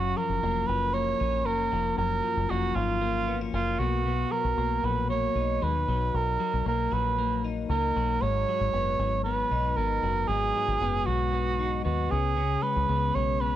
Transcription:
Already playing: F#1 F#2 C#4 F#4
0.17 F3 A#4
0.29 F#1
0.43 F1 A#3
0.67 F#1 F3 B4
0.94 A#3 C#5
1.20 A#1 C#4
1.46 F#1 A#3 A#4
1.72 F1 F3
1.97 F#1 F#2 A#4
2.23 F3
2.37 F#1
2.49 F1 A#3 F#4
2.75 G#1 F3 F4
3.02 A#3
3.28 B3
3.41 C#4
3.53 F#1 A#3 F4
3.79 B1 B2 F#4
4.06 B2
4.31 F#3 A#4
4.44 B1
4.57 B1 A#3
4.84 A#1 F#3 B4
5.10 A#3 C#5
5.35 B1 D#4
5.62 D#2 G#3 B4
5.88 B1 F#3
6.14 B1 A#4
6.40 F#3
6.54 B1
6.66 B1 A#3 A#4
6.91 A#1 F#3 B4
7.18 A#3
7.44 D#4
7.70 C#2 A#3 A#4
7.96 B1 F#3
8.22 G#1 G#2 C#5
8.49 F#3
8.61 G#1
8.73 F#1 B3
8.99 G#1 F#3
9.24 B3 B4
9.51 B1 D#4
9.76 G#1 B3 A#4
10.03 F#1 F#3
10.28 G#1 G#2 G#4
10.56 F#3
10.68 G#1
10.81 F#1 B3
11.06 B1 F#3 F#4
11.33 B3
11.59 D#4
11.85 D#2 B3 F#4
12.11 C#2 C#3 G#4
12.37 C#3
12.63 G#3 B4
12.76 C#2
12.89 C#2 B3
13.15 B1 G#3 C#5
13.41 B3 B4

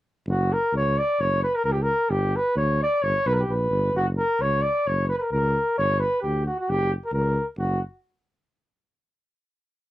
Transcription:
0.27 F#1 F#4
0.52 A#4
0.72 C#2 C#5
0.98 D5
1.19 F#1 C#5
1.43 B4
1.55 A#4
1.64 C#2 A#4
1.72 G4
1.82 A#4
2.09 G1 G4
2.36 B4
2.56 D2 C#5
2.82 D5
3.02 G1 C#5
3.26 B1 B4
3.31 A#4 B4
3.39 G4
3.48 A#1 B4
3.71 G1
3.95 F#1 F#4
4.18 A#4
4.40 C#2 C#5
4.62 D5
4.86 F#1 C#5
5.08 B4
5.17 A#4 B4
5.32 C#2 A#4
5.78 G1 C#5
6.00 B4
6.22 D2 G4
6.46 F#4
6.59 F#4
6.69 F#1 G4
7.05 A#4
7.12 C#2 A#4
7.57 F#1 F#4

